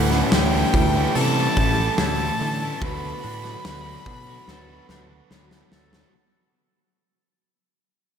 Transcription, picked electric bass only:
0.00 0.21 D2 loud
0.33 0.63 D2 loud
0.74 1.05 D2 loud
1.16 1.46 C3 medium
1.57 1.88 A1 loud
1.99 2.30 D2 loud
2.41 2.71 D3 loud
2.82 3.12 D2 loud
3.24 3.55 A2 medium
3.65 3.96 D2 loud
4.06 4.37 B2 medium
4.48 4.79 D2 loud
4.89 5.20 D2 loud
5.31 5.61 D2 medium
5.72 6.03 D2 medium

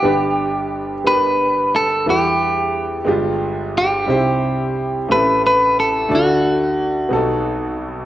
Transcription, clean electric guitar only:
0.00 1.07 G4 medium
1.07 1.76 B4 loud
1.76 2.06 A4 loud
2.10 3.77 G4 loud
3.78 5.11 G4 medium
5.12 5.42 B4 medium
5.47 5.79 B4 loud
5.80 6.13 A4 medium
6.15 7.77 F#4 medium

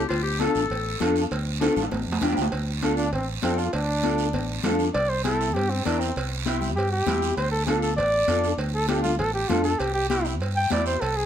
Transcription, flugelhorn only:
2.97 3.12 D4 medium
3.13 3.28 C4 medium
3.44 3.60 C4 medium
3.59 3.73 F4 medium
3.74 4.62 D4 medium
4.94 5.11 D5 medium
5.09 5.24 C5 medium
5.24 5.56 A4 medium
5.54 5.72 G4 medium
5.70 5.85 C4 medium
5.86 6.01 D4 medium
6.00 6.15 C4 medium
6.76 6.91 G4 medium
6.91 7.36 G4 medium
7.37 7.51 C5 medium
7.51 7.65 A4 medium
7.66 7.81 A4 medium
7.82 7.96 A4 medium
7.97 8.56 D5 loud
8.74 8.88 A4 loud
8.88 9.02 G4 medium
9.03 9.18 F4 medium
9.19 9.33 A4 loud
9.34 9.50 G4 medium
9.49 9.64 F4 medium
9.64 9.81 A4 medium
9.79 9.94 G4 medium
9.94 10.09 G4 medium
10.10 10.25 G4 medium
10.56 10.71 G5 loud
10.72 10.86 D5 medium
10.87 11.02 C5 medium
11.01 11.18 A4 medium
11.16 11.26 G#4 loud

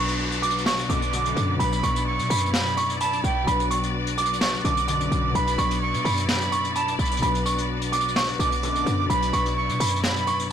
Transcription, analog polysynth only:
0.90 1.00 F#2 loud
0.90 1.00 B2 loud
0.90 1.00 D3 loud
1.13 1.58 F#2 loud
1.13 1.58 B2 loud
1.13 1.58 D3 loud
4.65 4.75 F#2 loud
4.65 4.75 B2 loud
4.65 4.75 D3 loud
4.88 5.33 F#2 loud
4.88 5.33 B2 loud
4.88 5.33 D3 loud
8.40 8.50 F#2 loud
8.40 8.50 B2 loud
8.40 8.50 D3 loud
8.63 9.08 F#2 loud
8.63 9.08 B2 loud
8.63 9.08 D3 loud

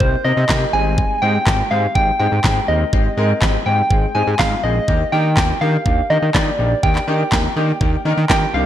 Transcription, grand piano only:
0.00 0.12 A#3 medium
0.00 0.12 C4 medium
0.00 0.12 D#4 medium
0.00 0.12 G4 medium
0.24 0.37 A#3 medium
0.24 0.37 C4 medium
0.24 0.37 D#4 medium
0.24 0.37 A#4 medium
0.49 0.61 A#3 medium
0.49 0.61 C4 medium
0.49 0.61 D#4 medium
0.49 0.61 G4 loud
0.73 1.13 G3 medium
0.73 1.12 G#3 medium
0.73 1.13 C4 medium
0.73 1.13 D#4 medium
1.22 1.34 G#3 medium
1.22 1.34 C4 medium
1.22 1.34 D#4 medium
1.22 1.34 G4 loud
1.47 1.59 G#3 medium
1.47 1.59 C4 medium
1.47 1.59 D#4 medium
1.47 1.59 G4 medium
1.71 1.83 G#3 medium
1.71 1.83 C4 medium
1.71 1.83 D#4 medium
1.71 1.83 G4 medium
1.95 2.07 G#3 medium
1.95 2.07 C4 medium
1.95 2.08 D#4 medium
1.95 2.08 G4 medium
2.20 2.32 G#3 medium
2.20 2.32 C4 medium
2.20 2.32 D#4 medium
2.20 2.32 G4 medium
2.44 2.56 G#3 loud
2.44 2.56 C4 medium
2.44 2.56 D#4 medium
2.44 2.56 G4 loud
2.68 2.81 G#3 medium
2.68 2.81 C4 medium
2.68 2.81 D#4 medium
2.68 2.81 A#4 medium
2.93 3.05 G#3 medium
2.93 3.05 C4 medium
2.93 3.05 D#4 medium
2.93 3.05 G4 loud
3.17 3.29 G#3 medium
3.17 3.29 C4 medium
3.17 3.29 D#4 medium
3.17 3.30 A#4 loud
3.42 3.54 G#3 medium
3.42 3.54 C4 medium
3.42 3.54 D#4 medium
3.42 3.54 G4 medium
3.66 3.78 G#3 medium
3.66 3.78 C4 medium
3.66 3.78 D#4 medium
3.66 3.78 G4 medium
3.90 4.02 G#3 medium
3.90 4.03 C4 medium
3.90 4.03 D#4 medium
3.90 4.03 G#4 medium
4.15 4.27 G#3 medium
4.15 4.27 C4 medium
4.15 4.27 D#4 medium
4.15 4.27 G4 medium
4.39 4.51 G#3 loud
4.39 4.51 C4 medium
4.39 4.51 D#4 medium
4.39 4.51 F4 loud
4.64 4.76 G#3 medium
4.64 4.76 C4 medium
4.64 4.76 D#4 medium
4.64 4.76 G#4 medium
4.88 5.00 A#3 medium
4.88 5.00 D4 medium
4.88 5.00 D#4 medium
4.88 5.00 G4 loud
5.12 5.24 A#3 medium
5.12 5.25 D4 medium
5.12 5.25 D#4 medium
5.12 5.25 G4 loud
5.37 5.49 A#3 medium
5.37 5.49 D4 medium
5.37 5.49 D#4 medium
5.37 5.49 G4 medium
5.61 5.73 A#3 medium
5.61 5.73 D4 medium
5.61 5.73 D#4 medium
5.61 5.74 G4 medium
5.86 5.98 A#3 medium
5.86 5.98 D4 medium
5.86 5.98 D#4 medium
5.86 5.98 G4 medium
6.10 6.22 A#3 medium
6.10 6.22 D4 medium
6.10 6.22 D#4 medium
6.10 6.22 G4 medium
6.34 6.46 A#3 loud
6.34 6.47 D4 medium
6.34 6.47 D#4 medium
6.34 6.47 G4 loud
6.59 6.71 A#3 medium
6.59 6.71 D4 medium
6.59 6.71 D#4 medium
6.59 6.71 G4 medium
6.83 6.95 A#3 medium
6.83 6.95 D4 medium
6.83 6.95 D#4 medium
6.83 6.95 G4 loud
7.07 7.20 A#3 medium
7.07 7.20 D4 medium
7.07 7.20 D#4 medium
7.07 7.20 G4 loud
7.32 7.44 A#3 medium
7.32 7.44 D4 medium
7.32 7.44 D#4 medium
7.32 7.44 G4 medium
7.56 7.68 A#3 medium
7.56 7.68 D4 medium
7.56 7.69 D#4 medium
7.56 7.69 G4 loud
7.81 7.93 A#3 medium
7.81 7.93 D4 medium
7.81 7.93 D#4 medium
7.81 7.93 G4 loud
8.05 8.17 A#3 medium
8.05 8.17 D4 medium
8.05 8.17 D#4 medium
8.05 8.17 A#4 loud
8.29 8.42 A#3 loud
8.29 8.42 D4 loud
8.29 8.42 D#4 loud
8.29 8.42 G4 loud
8.29 8.66 A#5 medium
8.54 8.66 A#3 medium
8.54 8.66 D4 medium
8.54 8.66 D#4 medium
8.54 8.66 G4 loud

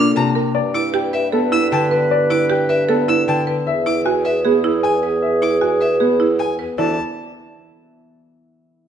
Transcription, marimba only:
0.00 0.22 D4 medium
0.35 0.61 A#4 medium
0.74 1.00 E4 medium
0.94 1.19 G4 medium
1.13 1.39 B4 medium
1.32 1.58 A4 medium
1.52 1.78 E4 medium
1.91 2.17 B4 medium
2.30 2.56 E4 medium
2.50 2.75 G4 medium
2.69 2.95 B4 medium
2.89 3.14 A4 medium
3.08 3.34 E4 medium
3.47 3.72 B4 medium
3.86 4.11 E4 medium
4.06 4.31 F#4 medium
4.25 4.50 B4 medium
4.45 4.70 G#4 medium
4.64 4.89 E4 medium
5.03 5.28 B4 soft
5.42 5.67 E4 medium
5.61 5.87 F#4 medium
5.81 6.06 B4 soft
6.00 6.26 G#4 medium
6.20 6.45 E4 medium
6.59 6.84 B4 soft
6.78 6.96 E4 medium

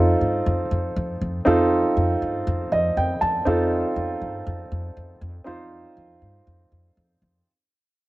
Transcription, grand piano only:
0.00 1.41 C4 medium
0.00 1.42 D#4 medium
0.00 1.42 F4 medium
0.00 1.43 A4 medium
1.45 3.42 C4 medium
1.45 3.42 D#4 medium
1.45 3.42 F4 medium
1.45 3.43 A4 medium
2.72 2.95 D#5 medium
2.97 3.20 G5 medium
3.21 3.44 A5 medium
3.45 5.42 C4 medium
3.45 5.42 D#4 medium
3.45 5.42 F4 medium
3.45 5.43 A4 medium
5.44 7.41 C4 medium
5.44 7.42 D#4 medium
5.44 7.42 F4 medium
5.44 7.43 C5 medium

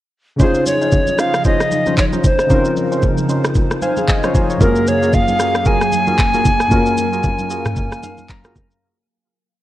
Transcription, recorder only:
0.41 0.65 C5 medium
0.67 1.21 C#5 medium
1.20 1.46 F5 loud
1.46 1.95 D#5 loud
1.99 2.05 C#5 medium
2.25 2.74 C5 medium
4.62 4.90 A#4 medium
4.88 5.16 C#5 medium
5.14 5.68 F5 loud
5.67 8.30 G#5 loud

